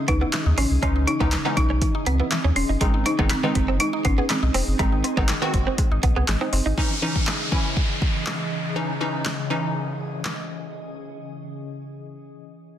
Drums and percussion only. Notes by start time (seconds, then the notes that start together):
0.08 kick, closed hi-hat
0.33 snare, clap, closed hi-hat
0.58 open hi-hat
0.83 kick, closed hi-hat
1.08 closed hi-hat
1.21 kick
1.32 snare, clap, closed hi-hat
1.57 kick, closed hi-hat
1.82 kick, closed hi-hat
2.06 closed hi-hat
2.31 snare, clap, closed hi-hat
2.56 open hi-hat
2.81 kick, closed hi-hat
3.06 closed hi-hat
3.19 kick
3.30 snare, clap, closed hi-hat
3.55 kick, closed hi-hat
3.80 closed hi-hat
4.05 kick, closed hi-hat
4.30 snare, clap, closed hi-hat
4.54 open hi-hat
4.79 kick, closed hi-hat
5.04 closed hi-hat
5.17 kick
5.28 snare, clap, closed hi-hat
5.54 kick, closed hi-hat
5.78 kick, closed hi-hat
6.03 kick, closed hi-hat
6.28 snare, clap, closed hi-hat
6.53 open hi-hat
6.78 kick
7.16 kick
7.27 snare, clap
7.52 kick
7.77 kick
8.02 kick
8.26 snare, clap
9.25 snare, clap
10.25 snare, clap